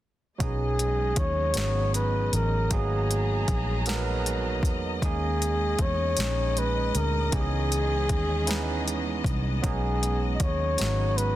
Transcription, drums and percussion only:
0, 0, Header, 1, 2, 480
1, 0, Start_track
1, 0, Key_signature, 5, "major"
1, 0, Tempo, 769231
1, 251, Time_signature, 6, 3, 24, 8
1, 7087, End_track
2, 0, Start_track
2, 0, Title_t, "Drums"
2, 251, Note_on_c, 9, 36, 114
2, 251, Note_on_c, 9, 42, 72
2, 314, Note_off_c, 9, 36, 0
2, 314, Note_off_c, 9, 42, 0
2, 494, Note_on_c, 9, 42, 51
2, 557, Note_off_c, 9, 42, 0
2, 725, Note_on_c, 9, 42, 49
2, 728, Note_on_c, 9, 36, 95
2, 788, Note_off_c, 9, 42, 0
2, 791, Note_off_c, 9, 36, 0
2, 960, Note_on_c, 9, 42, 74
2, 981, Note_on_c, 9, 38, 101
2, 1022, Note_off_c, 9, 42, 0
2, 1043, Note_off_c, 9, 38, 0
2, 1212, Note_on_c, 9, 42, 45
2, 1275, Note_off_c, 9, 42, 0
2, 1454, Note_on_c, 9, 42, 51
2, 1516, Note_off_c, 9, 42, 0
2, 1689, Note_on_c, 9, 42, 77
2, 1690, Note_on_c, 9, 36, 110
2, 1751, Note_off_c, 9, 42, 0
2, 1753, Note_off_c, 9, 36, 0
2, 1938, Note_on_c, 9, 42, 47
2, 2001, Note_off_c, 9, 42, 0
2, 2171, Note_on_c, 9, 42, 49
2, 2172, Note_on_c, 9, 36, 92
2, 2233, Note_off_c, 9, 42, 0
2, 2234, Note_off_c, 9, 36, 0
2, 2407, Note_on_c, 9, 42, 79
2, 2428, Note_on_c, 9, 38, 107
2, 2470, Note_off_c, 9, 42, 0
2, 2491, Note_off_c, 9, 38, 0
2, 2660, Note_on_c, 9, 42, 50
2, 2722, Note_off_c, 9, 42, 0
2, 2888, Note_on_c, 9, 36, 90
2, 2900, Note_on_c, 9, 42, 52
2, 2950, Note_off_c, 9, 36, 0
2, 2963, Note_off_c, 9, 42, 0
2, 3134, Note_on_c, 9, 36, 110
2, 3136, Note_on_c, 9, 42, 73
2, 3196, Note_off_c, 9, 36, 0
2, 3199, Note_off_c, 9, 42, 0
2, 3381, Note_on_c, 9, 42, 50
2, 3443, Note_off_c, 9, 42, 0
2, 3610, Note_on_c, 9, 42, 47
2, 3613, Note_on_c, 9, 36, 92
2, 3673, Note_off_c, 9, 42, 0
2, 3675, Note_off_c, 9, 36, 0
2, 3848, Note_on_c, 9, 42, 75
2, 3869, Note_on_c, 9, 38, 102
2, 3910, Note_off_c, 9, 42, 0
2, 3931, Note_off_c, 9, 38, 0
2, 4098, Note_on_c, 9, 42, 45
2, 4160, Note_off_c, 9, 42, 0
2, 4335, Note_on_c, 9, 42, 52
2, 4397, Note_off_c, 9, 42, 0
2, 4570, Note_on_c, 9, 42, 70
2, 4573, Note_on_c, 9, 36, 116
2, 4632, Note_off_c, 9, 42, 0
2, 4635, Note_off_c, 9, 36, 0
2, 4816, Note_on_c, 9, 42, 52
2, 4879, Note_off_c, 9, 42, 0
2, 5050, Note_on_c, 9, 42, 49
2, 5052, Note_on_c, 9, 36, 94
2, 5113, Note_off_c, 9, 42, 0
2, 5114, Note_off_c, 9, 36, 0
2, 5287, Note_on_c, 9, 42, 74
2, 5308, Note_on_c, 9, 38, 103
2, 5349, Note_off_c, 9, 42, 0
2, 5371, Note_off_c, 9, 38, 0
2, 5538, Note_on_c, 9, 42, 48
2, 5601, Note_off_c, 9, 42, 0
2, 5768, Note_on_c, 9, 36, 93
2, 5779, Note_on_c, 9, 42, 51
2, 5831, Note_off_c, 9, 36, 0
2, 5842, Note_off_c, 9, 42, 0
2, 6013, Note_on_c, 9, 36, 111
2, 6013, Note_on_c, 9, 42, 73
2, 6075, Note_off_c, 9, 36, 0
2, 6076, Note_off_c, 9, 42, 0
2, 6258, Note_on_c, 9, 42, 51
2, 6320, Note_off_c, 9, 42, 0
2, 6489, Note_on_c, 9, 42, 47
2, 6491, Note_on_c, 9, 36, 100
2, 6551, Note_off_c, 9, 42, 0
2, 6553, Note_off_c, 9, 36, 0
2, 6727, Note_on_c, 9, 42, 75
2, 6748, Note_on_c, 9, 38, 99
2, 6790, Note_off_c, 9, 42, 0
2, 6811, Note_off_c, 9, 38, 0
2, 6976, Note_on_c, 9, 42, 51
2, 7039, Note_off_c, 9, 42, 0
2, 7087, End_track
0, 0, End_of_file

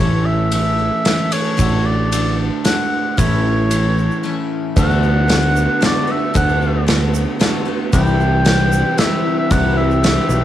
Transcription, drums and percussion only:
0, 0, Header, 1, 2, 480
1, 0, Start_track
1, 0, Tempo, 528634
1, 1442, Time_signature, 3, 2, 24, 8
1, 9482, End_track
2, 0, Start_track
2, 0, Title_t, "Drums"
2, 469, Note_on_c, 9, 51, 68
2, 560, Note_off_c, 9, 51, 0
2, 955, Note_on_c, 9, 51, 69
2, 962, Note_on_c, 9, 38, 80
2, 1046, Note_off_c, 9, 51, 0
2, 1052, Note_off_c, 9, 38, 0
2, 1197, Note_on_c, 9, 51, 76
2, 1288, Note_off_c, 9, 51, 0
2, 1443, Note_on_c, 9, 36, 110
2, 1443, Note_on_c, 9, 82, 93
2, 1445, Note_on_c, 9, 51, 72
2, 1534, Note_off_c, 9, 36, 0
2, 1534, Note_off_c, 9, 82, 0
2, 1535, Note_off_c, 9, 51, 0
2, 1928, Note_on_c, 9, 51, 66
2, 1931, Note_on_c, 9, 82, 101
2, 2019, Note_off_c, 9, 51, 0
2, 2022, Note_off_c, 9, 82, 0
2, 2404, Note_on_c, 9, 51, 68
2, 2410, Note_on_c, 9, 38, 80
2, 2414, Note_on_c, 9, 82, 83
2, 2495, Note_off_c, 9, 51, 0
2, 2501, Note_off_c, 9, 38, 0
2, 2505, Note_off_c, 9, 82, 0
2, 2889, Note_on_c, 9, 36, 109
2, 2893, Note_on_c, 9, 51, 64
2, 2893, Note_on_c, 9, 82, 97
2, 2980, Note_off_c, 9, 36, 0
2, 2983, Note_off_c, 9, 51, 0
2, 2984, Note_off_c, 9, 82, 0
2, 3367, Note_on_c, 9, 51, 59
2, 3370, Note_on_c, 9, 82, 96
2, 3458, Note_off_c, 9, 51, 0
2, 3461, Note_off_c, 9, 82, 0
2, 3614, Note_on_c, 9, 82, 33
2, 3705, Note_off_c, 9, 82, 0
2, 3734, Note_on_c, 9, 82, 29
2, 3825, Note_off_c, 9, 82, 0
2, 4330, Note_on_c, 9, 36, 114
2, 4330, Note_on_c, 9, 51, 80
2, 4330, Note_on_c, 9, 82, 97
2, 4420, Note_off_c, 9, 36, 0
2, 4421, Note_off_c, 9, 51, 0
2, 4421, Note_off_c, 9, 82, 0
2, 4450, Note_on_c, 9, 82, 31
2, 4541, Note_off_c, 9, 82, 0
2, 4566, Note_on_c, 9, 82, 28
2, 4657, Note_off_c, 9, 82, 0
2, 4808, Note_on_c, 9, 51, 80
2, 4814, Note_on_c, 9, 38, 87
2, 4899, Note_off_c, 9, 51, 0
2, 4905, Note_off_c, 9, 38, 0
2, 5049, Note_on_c, 9, 82, 98
2, 5140, Note_off_c, 9, 82, 0
2, 5285, Note_on_c, 9, 51, 73
2, 5291, Note_on_c, 9, 38, 82
2, 5376, Note_off_c, 9, 51, 0
2, 5382, Note_off_c, 9, 38, 0
2, 5768, Note_on_c, 9, 36, 109
2, 5768, Note_on_c, 9, 82, 90
2, 5769, Note_on_c, 9, 51, 80
2, 5858, Note_off_c, 9, 36, 0
2, 5859, Note_off_c, 9, 82, 0
2, 5860, Note_off_c, 9, 51, 0
2, 5889, Note_on_c, 9, 82, 30
2, 5980, Note_off_c, 9, 82, 0
2, 6006, Note_on_c, 9, 82, 28
2, 6097, Note_off_c, 9, 82, 0
2, 6246, Note_on_c, 9, 51, 71
2, 6252, Note_on_c, 9, 38, 87
2, 6337, Note_off_c, 9, 51, 0
2, 6343, Note_off_c, 9, 38, 0
2, 6486, Note_on_c, 9, 82, 107
2, 6577, Note_off_c, 9, 82, 0
2, 6725, Note_on_c, 9, 51, 70
2, 6731, Note_on_c, 9, 38, 87
2, 6816, Note_off_c, 9, 51, 0
2, 6822, Note_off_c, 9, 38, 0
2, 7201, Note_on_c, 9, 51, 77
2, 7201, Note_on_c, 9, 82, 97
2, 7203, Note_on_c, 9, 36, 110
2, 7292, Note_off_c, 9, 51, 0
2, 7292, Note_off_c, 9, 82, 0
2, 7294, Note_off_c, 9, 36, 0
2, 7326, Note_on_c, 9, 82, 34
2, 7417, Note_off_c, 9, 82, 0
2, 7446, Note_on_c, 9, 82, 34
2, 7537, Note_off_c, 9, 82, 0
2, 7678, Note_on_c, 9, 51, 72
2, 7685, Note_on_c, 9, 38, 83
2, 7769, Note_off_c, 9, 51, 0
2, 7775, Note_off_c, 9, 38, 0
2, 7921, Note_on_c, 9, 82, 103
2, 8012, Note_off_c, 9, 82, 0
2, 8155, Note_on_c, 9, 51, 76
2, 8162, Note_on_c, 9, 38, 89
2, 8246, Note_off_c, 9, 51, 0
2, 8253, Note_off_c, 9, 38, 0
2, 8632, Note_on_c, 9, 51, 77
2, 8635, Note_on_c, 9, 36, 113
2, 8636, Note_on_c, 9, 82, 90
2, 8723, Note_off_c, 9, 51, 0
2, 8726, Note_off_c, 9, 36, 0
2, 8727, Note_off_c, 9, 82, 0
2, 8994, Note_on_c, 9, 82, 30
2, 9085, Note_off_c, 9, 82, 0
2, 9115, Note_on_c, 9, 51, 80
2, 9122, Note_on_c, 9, 38, 82
2, 9206, Note_off_c, 9, 51, 0
2, 9212, Note_off_c, 9, 38, 0
2, 9350, Note_on_c, 9, 82, 111
2, 9441, Note_off_c, 9, 82, 0
2, 9482, End_track
0, 0, End_of_file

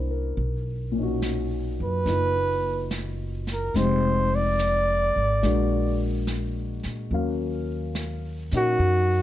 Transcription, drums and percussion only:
0, 0, Header, 1, 2, 480
1, 0, Start_track
1, 0, Key_signature, -6, "minor"
1, 0, Tempo, 841515
1, 213, Time_signature, 4, 2, 24, 8
1, 5260, End_track
2, 0, Start_track
2, 0, Title_t, "Drums"
2, 215, Note_on_c, 9, 25, 31
2, 697, Note_on_c, 9, 38, 42
2, 697, Note_on_c, 9, 44, 44
2, 754, Note_off_c, 9, 38, 0
2, 754, Note_off_c, 9, 44, 0
2, 1180, Note_off_c, 9, 25, 0
2, 1180, Note_on_c, 9, 25, 38
2, 1180, Note_on_c, 9, 38, 27
2, 1237, Note_off_c, 9, 38, 0
2, 1659, Note_on_c, 9, 38, 41
2, 1659, Note_on_c, 9, 44, 50
2, 1716, Note_off_c, 9, 38, 0
2, 1716, Note_off_c, 9, 44, 0
2, 1980, Note_on_c, 9, 38, 23
2, 2037, Note_off_c, 9, 38, 0
2, 2140, Note_off_c, 9, 25, 0
2, 2140, Note_on_c, 9, 25, 30
2, 2140, Note_on_c, 9, 38, 27
2, 2197, Note_off_c, 9, 38, 0
2, 2619, Note_on_c, 9, 38, 37
2, 2619, Note_on_c, 9, 44, 38
2, 2676, Note_off_c, 9, 38, 0
2, 2676, Note_off_c, 9, 44, 0
2, 3098, Note_off_c, 9, 25, 0
2, 3098, Note_on_c, 9, 25, 38
2, 3098, Note_on_c, 9, 38, 26
2, 3155, Note_off_c, 9, 38, 0
2, 3578, Note_on_c, 9, 38, 41
2, 3578, Note_on_c, 9, 44, 40
2, 3635, Note_off_c, 9, 38, 0
2, 3635, Note_off_c, 9, 44, 0
2, 3898, Note_on_c, 9, 38, 26
2, 3955, Note_off_c, 9, 38, 0
2, 4056, Note_off_c, 9, 25, 0
2, 4056, Note_on_c, 9, 25, 30
2, 4535, Note_on_c, 9, 38, 39
2, 4535, Note_on_c, 9, 44, 44
2, 4592, Note_off_c, 9, 38, 0
2, 4592, Note_off_c, 9, 44, 0
2, 4856, Note_on_c, 9, 38, 27
2, 4913, Note_off_c, 9, 38, 0
2, 5015, Note_off_c, 9, 25, 0
2, 5015, Note_on_c, 9, 25, 31
2, 5260, Note_off_c, 9, 25, 0
2, 5260, End_track
0, 0, End_of_file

